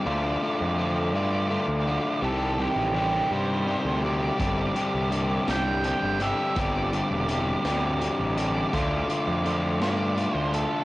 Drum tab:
HH |------|------|xxxxxx|xxxxxx|
SD |------|------|---o--|---o--|
BD |------|------|o-----|o-----|

HH |xxxxxx|
SD |---o--|
BD |o-----|